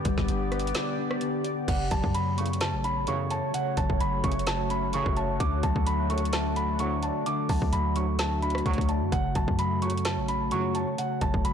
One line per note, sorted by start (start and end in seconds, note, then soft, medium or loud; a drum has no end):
0.00 0.27 D3 medium
0.00 1.64 B3 medium
0.00 0.29 D4 medium
0.00 1.64 G4 medium
0.00 0.75 D5 medium
0.00 1.66 D5 medium
0.05 0.17 G1 loud
0.05 1.22 G3 medium
0.05 kick medium
0.05 closed hi-hat medium
0.18 0.28 G1 loud
0.18 kick medium
0.18 snare medium
0.28 0.73 G1 loud
0.28 0.74 D3 medium
0.28 closed hi-hat medium
0.52 1.68 B3 medium
0.52 cross-stick medium
0.52 closed hi-hat soft
0.59 closed hi-hat medium
0.67 closed hi-hat medium
0.75 1.20 D3 medium
0.75 snare loud
0.75 closed hi-hat medium
0.98 1.68 D4 medium
1.11 cross-stick medium
1.21 1.68 D3 medium
1.21 closed hi-hat medium
1.44 1.68 D5 medium
1.44 closed hi-hat medium
1.68 1.90 F#1 loud
1.68 2.14 C#3 medium
1.68 11.53 A3 medium
1.68 11.53 F#4 medium
1.68 5.36 C#5 loud
1.68 1.90 F#5 medium
1.68 kick loud
1.68 closed hi-hat medium
1.68 crash loud
1.91 2.03 F#1 loud
1.91 3.08 F#3 medium
1.91 2.13 A5 medium
1.91 kick medium
1.91 closed hi-hat medium
2.04 2.75 F#2 loud
2.04 kick medium
2.14 2.60 C#3 medium
2.14 2.37 B5 medium
2.14 closed hi-hat medium
2.38 2.48 A1 medium
2.38 2.48 F#2 medium
2.38 2.48 C#3 loud
2.38 3.54 A3 loud
2.38 2.60 C#6 medium
2.38 closed hi-hat medium
2.46 closed hi-hat medium
2.53 closed hi-hat medium
2.61 3.07 C#3 medium
2.61 2.83 A5 medium
2.61 snare loud
2.61 closed hi-hat medium
2.73 3.09 A1 loud
2.84 4.01 C#4 medium
2.84 3.06 B5 medium
2.84 closed hi-hat medium
3.07 3.41 A1 loud
3.07 3.41 F#2 loud
3.07 3.41 C#3 loud
3.07 3.53 C#3 medium
3.07 3.30 C#6 medium
3.07 closed hi-hat medium
3.31 4.47 C#5 medium
3.31 3.53 A5 medium
3.31 closed hi-hat medium
3.54 4.00 C#3 medium
3.54 3.76 F#5 medium
3.54 closed hi-hat loud
3.77 3.89 F#1 loud
3.77 4.94 F#3 medium
3.77 3.99 A5 medium
3.77 kick medium
3.77 closed hi-hat medium
3.90 4.00 F#1 loud
3.90 kick medium
4.00 4.23 F#1 loud
4.00 4.46 C#3 medium
4.00 4.23 B5 medium
4.00 closed hi-hat medium
4.24 5.03 F#1 loud
4.24 4.34 A1 medium
4.24 4.34 F#2 medium
4.24 4.34 C#3 loud
4.24 5.40 A3 loud
4.24 4.46 C#6 medium
4.24 kick medium
4.24 closed hi-hat medium
4.32 closed hi-hat medium
4.39 closed hi-hat medium
4.47 4.93 C#3 medium
4.47 4.69 A5 medium
4.47 snare loud
4.47 closed hi-hat medium
4.70 5.40 C#4 medium
4.70 4.92 B5 medium
4.70 closed hi-hat medium
4.93 5.27 A1 loud
4.93 5.27 F#2 loud
4.93 5.27 C#3 loud
4.93 5.40 C#3 medium
4.93 5.16 C#6 medium
4.93 closed hi-hat medium
5.06 5.39 F#1 loud
5.06 kick loud
5.17 5.40 C#5 medium
5.17 5.39 A5 medium
5.17 closed hi-hat medium
5.40 5.62 D2 loud
5.40 5.85 D3 medium
5.40 7.24 D5 medium
5.40 5.62 D6 medium
5.40 kick loud
5.40 closed hi-hat loud
5.63 5.75 D2 loud
5.63 6.80 F#3 medium
5.63 5.85 A5 medium
5.63 kick medium
5.63 closed hi-hat medium
5.76 7.11 D2 loud
5.76 kick medium
5.86 6.32 D3 medium
5.86 6.09 B5 medium
5.86 closed hi-hat medium
6.10 6.20 F#1 medium
6.10 6.20 D2 medium
6.10 6.20 A2 loud
6.10 7.26 A3 loud
6.10 6.32 C#6 medium
6.10 closed hi-hat medium
6.18 closed hi-hat medium
6.25 closed hi-hat medium
6.33 6.79 D3 medium
6.33 6.55 A5 medium
6.33 snare loud
6.33 closed hi-hat medium
6.56 7.73 D4 medium
6.56 6.78 B5 medium
6.56 closed hi-hat medium
6.79 7.13 D2 loud
6.79 7.13 A2 loud
6.79 7.25 D3 medium
6.79 7.13 F#3 loud
6.79 7.02 C#6 medium
6.79 closed hi-hat medium
7.03 8.19 D5 medium
7.03 7.25 A5 medium
7.03 closed hi-hat medium
7.26 7.72 D3 medium
7.26 9.10 E5 medium
7.26 7.48 D6 medium
7.26 closed hi-hat loud
7.49 7.61 D2 loud
7.49 8.66 F#3 medium
7.49 7.72 A5 medium
7.49 kick medium
7.49 open hi-hat medium
7.62 7.72 D2 loud
7.62 kick medium
7.73 8.62 D2 loud
7.73 8.18 D3 medium
7.73 7.95 B5 medium
7.73 closed hi-hat medium
7.96 8.06 D2 medium
7.96 8.06 A2 medium
7.96 8.06 F#3 medium
7.96 9.12 A3 loud
7.96 8.18 C#6 medium
7.96 closed hi-hat medium
8.19 8.65 D3 medium
8.19 8.41 A5 medium
8.19 snare loud
8.19 closed hi-hat medium
8.42 9.12 D4 medium
8.42 8.64 B5 medium
8.42 closed hi-hat soft
8.50 closed hi-hat soft
8.55 cross-stick medium
8.55 closed hi-hat soft
8.66 8.78 D2 loud
8.66 9.00 D2 loud
8.66 9.00 A2 loud
8.66 9.12 D3 medium
8.66 9.00 F#3 loud
8.66 8.88 C#6 medium
8.66 kick medium
8.66 closed hi-hat medium
8.73 closed hi-hat medium
8.78 9.03 D2 loud
8.78 kick medium
8.78 closed hi-hat medium
8.89 9.12 D5 medium
8.89 9.11 A5 medium
8.89 closed hi-hat medium
9.01 9.12 F#2 loud
9.12 9.35 F#1 loud
9.12 9.57 C#3 medium
9.12 10.96 C#5 medium
9.12 9.34 F#5 medium
9.12 kick loud
9.12 closed hi-hat medium
9.35 9.47 F#1 loud
9.35 10.52 F#3 medium
9.35 9.58 A5 medium
9.35 kick medium
9.35 closed hi-hat medium
9.48 10.19 F#2 loud
9.48 kick medium
9.59 10.05 C#3 medium
9.59 9.81 B5 medium
9.59 closed hi-hat medium
9.82 9.92 C#2 medium
9.82 9.92 A2 medium
9.82 9.92 F#3 medium
9.82 10.98 A3 medium
9.82 10.04 C#6 medium
9.82 closed hi-hat medium
9.90 closed hi-hat medium
9.97 closed hi-hat medium
10.05 10.51 C#3 medium
10.05 10.27 A5 medium
10.05 snare loud
10.05 closed hi-hat medium
10.18 10.53 A1 loud
10.28 11.45 C#4 medium
10.28 10.51 B5 medium
10.28 closed hi-hat medium
10.51 10.86 C#2 loud
10.51 10.86 F#2 loud
10.51 10.86 A2 loud
10.51 10.97 C#3 medium
10.51 10.86 F#3 loud
10.51 10.74 C#6 medium
10.51 closed hi-hat medium
10.75 11.53 C#5 medium
10.75 10.97 A5 medium
10.75 closed hi-hat medium
10.98 11.43 C#3 medium
10.98 11.53 B4 loud
10.98 11.20 F#5 medium
10.98 closed hi-hat loud
11.21 11.33 F#1 loud
11.21 11.53 F#3 medium
11.21 11.44 A5 medium
11.21 kick medium
11.21 closed hi-hat medium
11.34 11.44 F#1 loud
11.34 kick medium
11.44 11.53 F#1 loud
11.44 11.53 C#3 medium
11.44 11.53 B5 medium
11.44 closed hi-hat medium